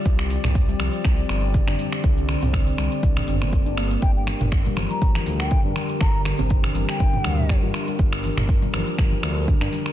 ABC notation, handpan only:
X:1
M:4/4
L:1/16
Q:"Swing 16ths" 1/4=121
K:Gm
V:1 name="Handpan" clef=bass
z4 z G, F, z4 z D, D G, z | D, z D, C D, z G, z D, z C B, z D B, B, | z4 z G, F, z F, z3 D, D G, z | D, z D, C D, z G, z D, z G, G, z F G, G, |
z4 z G, F, z F, z3 D, D G, z |]